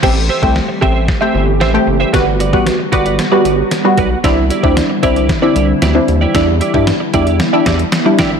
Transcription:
0.03 analog synth bass A1, ambient pad E3 G3 A3 C4 G4, synth stab A3 C4 G4, clean electric guitar G4 C5 E5, kick, snare, crash
0.16 muted clean electric guitar stroke
0.29 clean electric guitar G4 C5 E5
0.42 analog synth bass C2, synth stab A3 C4 G4, clean electric guitar G4 C5 E5, kick
0.55 muted clean electric guitar stroke, snare
0.68 muted clean electric guitar stroke
0.81 analog synth bass A1, synth stab A3 C4 G4, clean electric guitar G4 C5 E5, kick
0.94 clean electric guitar G4 C5 E5
1.08 muted clean electric guitar stroke, kick, snare
1.21 synth stab A3 C4 G4, clean electric guitar G4 C5 E5
1.34 analog synth bass G1, clean electric guitar G4 C5 E5
1.47 muted clean electric guitar stroke
1.60 analog synth bass A1, clean electric guitar G4 C5 E5, snare
1.74 synth stab A3 C4 G4, muted clean electric guitar stroke
1.87 analog synth bass F#1, muted clean electric guitar stroke
2.00 clean electric guitar G4 C5 E5
2.13 analog synth bass G1, ambient pad D3 F#3 B3 F#4, synth stab G3 B3 F#4, clean electric guitar F#4 B4 D5, kick, snare, closed hi-hat
2.26 muted clean electric guitar stroke
2.40 clean electric guitar F#4 B4 D5, closed hi-hat
2.53 analog synth bass A1, synth stab G3 B3 F#4, clean electric guitar F#4 B4 D5, kick
2.66 muted clean electric guitar stroke, snare, closed hi-hat
2.79 muted clean electric guitar stroke
2.92 analog synth bass G1, synth stab G3 B3 F#4, clean electric guitar F#4 B4 D5, kick, closed hi-hat
3.05 clean electric guitar F#4 B4 D5, closed hi-hat
3.19 snare, closed hi-hat
3.32 synth stab G3 B3 F#4, clean electric guitar F#4 B4 D5
3.45 analog synth bass G1, clean electric guitar F#4 B4 D5, closed hi-hat
3.58 muted clean electric guitar stroke
3.71 muted clean electric guitar stroke, snare, closed hi-hat
3.85 synth stab G3 B3 F#4, muted clean electric guitar stroke
3.98 analog synth bass B1, clean electric guitar F#4 B4 D5, kick, closed hi-hat
4.11 muted clean electric guitar stroke
4.24 analog synth bass C2, ambient pad E3 C4 E4, synth stab C4 D4 E4, clean electric guitar E4 G4 D5, kick, snare, closed hi-hat
4.37 muted clean electric guitar stroke
4.50 clean electric guitar E4 G4 D5, closed hi-hat
4.63 analog synth bass D2, synth stab C4 D4 E4, clean electric guitar E4 G4 D5, kick
4.76 muted clean electric guitar stroke, snare, closed hi-hat
4.90 muted clean electric guitar stroke
5.03 analog synth bass C2, synth stab C4 D4 E4, clean electric guitar E4 G4 D5, kick, closed hi-hat
5.16 clean electric guitar E4 G4 D5, closed hi-hat
5.29 muted clean electric guitar stroke, kick, snare, closed hi-hat
5.42 synth stab C4 D4 E4, clean electric guitar E4 G4 D5
5.56 analog synth bass C2, clean electric guitar E4 G4 D5, closed hi-hat
5.69 muted clean electric guitar stroke
5.82 analog synth bass D2, clean electric guitar E4 G4 D5, snare, closed hi-hat
5.95 synth stab C4 D4 E4, muted clean electric guitar stroke
6.08 analog synth bass D#2, muted clean electric guitar stroke, closed hi-hat
6.21 clean electric guitar E4 G4 D5
6.35 analog synth bass E2, synth stab G3 D4 E4, ambient pad B3, clean electric guitar E4 G4 D5, kick, snare, closed hi-hat
6.48 muted clean electric guitar stroke
6.61 clean electric guitar E4 G4 D5, closed hi-hat
6.74 analog synth bass G2, synth stab G3 D4 E4, clean electric guitar E4 G4 D5, kick
6.87 muted clean electric guitar stroke, snare, closed hi-hat
7.00 muted clean electric guitar stroke
7.14 analog synth bass E2, synth stab G3 D4 E4, clean electric guitar E4 G4 D5, kick, closed hi-hat
7.27 clean electric guitar E4 G4 D5, closed hi-hat
7.40 muted clean electric guitar stroke, snare, closed hi-hat
7.53 synth stab G3 D4 E4, clean electric guitar E4 G4 D5
7.66 analog synth bass E2, clean electric guitar E4 G4 D5, kick, snare, closed hi-hat
7.79 muted clean electric guitar stroke, closed hi-hat
7.92 muted clean electric guitar stroke, snare, closed hi-hat
8.05 synth stab G3 D4 E4, muted clean electric guitar stroke
8.19 analog synth bass G#1, clean electric guitar E4 G4 D5, kick, snare, closed hi-hat
8.32 muted clean electric guitar stroke

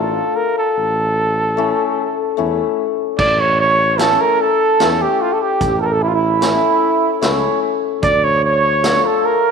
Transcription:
Already playing: tuba A1, hammered dulcimer A3 D4 F4, cornet A4
0.36 cornet A#4
0.58 cornet A4
0.77 tuba A1
1.57 hammered dulcimer A3 C#4 E4
2.37 tuba E2, hammered dulcimer A3 C#4 E4
3.18 tuba A1, accordion D5, cornet D5, kick, crash
3.39 accordion C#5, cornet C#5
3.59 accordion C#5, cornet C#5
3.98 hammered dulcimer A3 C#4 E4, cornet A4, accordion A4, snare, closed hi-hat
4.20 cornet A#4, accordion A#4
4.40 accordion A4, cornet A4
4.80 tuba E2, hammered dulcimer A3 C#4 E4, snare, closed hi-hat
5.01 accordion G4, cornet G4
5.21 cornet F4
5.34 cornet A4
5.40 accordion G4, cornet G4
5.61 tuba A1, kick, closed hi-hat
5.78 accordion A4 A#4, cornet A4
5.84 cornet A#4
5.88 accordion A4 A#4, cornet A4
6.01 accordion E4, cornet E4
6.08 cornet F4
6.14 accordion E4, cornet E4
6.41 hammered dulcimer A3 C#4 E4, snare, closed hi-hat
7.21 tuba C#2, hammered dulcimer A3 C#4 E4, accordion C#5, snare, closed hi-hat
8.03 tuba D2, accordion D5, cornet D5, kick, closed hi-hat
8.23 accordion C#5, cornet C#5
8.44 cornet C#5, accordion C#5
8.83 hammered dulcimer A3 D4 F4, snare, closed hi-hat
9.05 accordion A4, cornet A4
9.25 accordion A#4, cornet A#4

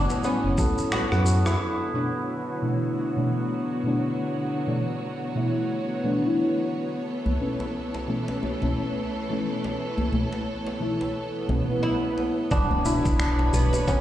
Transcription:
Already playing: string section A2 F#3 F#4 C#5, santur B3 C#4 E4
0.10 djembe slap, shaker
0.24 santur B3, oud C#4, shaker
0.44 analog synth bass F#1
0.58 santur A4, kick, djembe slap, djembe tone, djembe bass, shaker
0.78 shaker
0.92 santur B3, oud F#4, finger snap, cross-stick, shaker
1.12 analog synth bass F#2, santur F#4, cross-stick
1.26 shaker
1.46 santur E4, cross-stick, djembe slap, shaker
1.60 string section D3 F#3 B3 F#4 C#5
1.93 synth stab B2 E3 A3 D4
2.62 synth stab B2 E3 A3 D4
3.16 synth stab B2 E3 A3 D4
3.83 synth stab B2 E3 A3
3.87 synth stab D4
4.66 synth stab B2 E3 A3 D4
5.35 synth stab B2 E3 A3 E4
6.03 synth stab B2 E3 A3 D4
6.22 synth stab B2 E3 A3
6.26 synth stab E4
7.06 string section E3 A3 A4
7.26 djembe bass
7.39 synth stab B2 E3 A3 C#4
7.60 djembe slap, djembe tone
7.94 djembe slap
8.07 synth stab B2 E3 A3 C#4
8.28 djembe slap
8.43 djembe tone
8.61 synth stab B2 E3 A3 C#4, djembe slap, djembe bass
9.29 synth stab B2 E3 A3 C#4
9.64 djembe slap
9.98 djembe tone, djembe bass
10.12 synth stab B2 E3 A3 C#4, djembe bass
10.32 djembe slap, djembe tone
10.67 djembe slap
10.80 synth stab B2 E3 A3 E4
11.01 djembe slap
11.15 swell
11.48 synth stab B2 E3 A3 C#4, djembe slap, djembe tone, djembe bass
11.67 synth stab B2 E3 A3
11.71 synth stab E4
11.83 oud E4
12.18 djembe slap
12.51 analog synth bass B1, santur B3, oud D4, string section F#4 B4 C#5 B5, kick, impact, shaker
12.71 djembe bass
12.84 synth stab B2 E3 A3 D4, santur E4, djembe tone, shaker
13.05 analog synth bass B1, kick, djembe slap, shaker
13.19 santur D4, finger snap, shaker
13.39 djembe slap
13.52 analog synth bass B1, synth stab B2 E3 A3 D4, oud B3, shaker
13.73 djembe slap, djembe tone, shaker
13.87 santur B3, oud C#4, kick, shaker

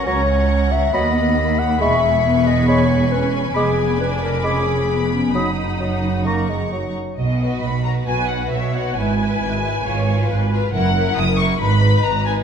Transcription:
Already playing: viola section C#4
0.06 double bass section C#2, cello section C#2, bassoon F#3, clarinet C#5, violin section F#5 A#5 C#6, oboe A#5, flute section C#6
0.72 clarinet E5
0.93 double bass section D#2, cello section D#2, bassoon F#3, viola section B3, clarinet D#5, oboe B5, flute section B5, violin section B5
1.37 viola section A#3
1.59 clarinet F#5
1.80 double bass section E1, cello section E2, bassoon G#3, viola section G#3, clarinet E5, violin section G#5 C#6, oboe B5, flute section C#6
2.24 viola section B3
2.47 clarinet D#5
2.68 bassoon G#3, clarinet C#5, oboe B5, flute section C#6
3.11 viola section C#4, clarinet B4
3.54 double bass section F1, cello section F2, bassoon G#3, viola section B3, clarinet G#4, oboe B5, violin section B5 D6, flute section D6
4.00 viola section D4, clarinet B4
4.22 clarinet A#4
4.43 bassoon G#3, viola section C#4, clarinet G#4, oboe B5, flute section D6
4.89 viola section B3
5.13 clarinet C#4
5.35 double bass section F#1, cello section F#2, bassoon F#3, viola section D#4, clarinet D#4, violin section F#5 D#6, oboe B5, flute section D#6
5.80 bassoon F#3
6.26 bassoon A#3, oboe A#5, violin section A#5 C#6, flute section C#6
6.49 bassoon G#3
6.72 bassoon F#3
7.17 double bass section B1, cello section B2, violin section D#5
7.41 violin section F#4 B4
7.62 double bass section B1, cello section B2, violin section B5
7.85 violin section F#4 B4 A#5
8.06 double bass section B1, cello section B2, viola section B4, violin section G#5
8.29 violin section F#4 B4 F#5
8.51 double bass section B1, cello section B2, viola section C#5, violin section E5
8.74 violin section F#4 B4 F#5
8.95 double bass section G#1, cello section G#2, violin section E4 B4 G#5, viola section B4
9.18 violin section E4 B4
9.40 double bass section G#1, cello section G#2
9.63 violin section E4 B4
9.84 double bass section G#1, cello section G#2, violin section F4 B4, viola section C#5
10.07 violin section F4 B4
10.29 double bass section G#1, cello section G#2, viola section B4
10.53 violin section F4 B4
10.73 double bass section F#1, cello section F#2, violin section E4 A#4 F#5, viola section A#4
10.97 violin section E4 A#4
11.17 double bass section F#1, cello section F#2, violin section D#6
11.39 violin section E4 A#4 C#6
11.60 double bass section G#1, cello section G#2, violin section D#4 B4 B5, viola section B4
11.82 violin section D#4 B4
12.04 double bass section G#1, cello section G#2, violin section A#5
12.26 violin section D#4 B4 G#5

